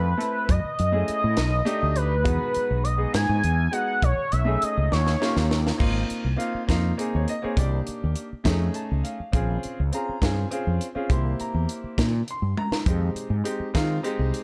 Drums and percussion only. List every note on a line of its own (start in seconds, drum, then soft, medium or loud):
0.21 closed hi-hat medium
0.49 kick loud
0.49 closed hi-hat medium
0.79 closed hi-hat medium
1.08 closed hi-hat medium
1.37 snare loud
1.37 closed hi-hat medium
1.67 closed hi-hat medium
1.96 closed hi-hat medium
2.25 kick loud
2.25 closed hi-hat medium
2.55 closed hi-hat medium
2.85 closed hi-hat medium
3.14 snare loud
3.14 closed hi-hat medium
3.44 closed hi-hat medium
3.73 closed hi-hat medium
4.02 kick loud
4.02 closed hi-hat medium
4.32 closed hi-hat medium
4.62 closed hi-hat medium
4.92 snare medium
5.07 snare medium
5.22 snare medium
5.37 snare medium
5.51 snare medium
5.67 snare medium
5.80 kick loud
5.80 crash loud
6.10 closed hi-hat soft
6.40 closed hi-hat medium
6.69 kick medium
6.69 snare loud
6.69 closed hi-hat medium
6.99 closed hi-hat medium
7.28 closed hi-hat medium
7.57 kick loud
7.57 closed hi-hat medium
7.87 closed hi-hat medium
8.16 closed hi-hat medium
8.45 kick medium
8.45 snare loud
8.45 closed hi-hat medium
8.74 closed hi-hat medium
9.05 closed hi-hat medium
9.33 kick loud
9.33 closed hi-hat medium
9.63 closed hi-hat medium
9.93 closed hi-hat medium
10.22 kick medium
10.22 snare loud
10.22 closed hi-hat medium
10.52 closed hi-hat medium
10.81 closed hi-hat medium
11.10 kick loud
11.10 closed hi-hat medium
11.40 closed hi-hat medium
11.69 closed hi-hat medium
11.98 kick medium
11.98 snare loud
11.98 closed hi-hat medium
12.28 closed hi-hat medium
12.57 high tom medium
12.72 snare medium
12.86 kick loud
12.86 closed hi-hat medium
13.16 closed hi-hat medium
13.45 closed hi-hat medium
13.75 kick medium
13.75 snare loud
13.75 closed hi-hat medium
14.04 closed hi-hat medium
14.34 closed hi-hat medium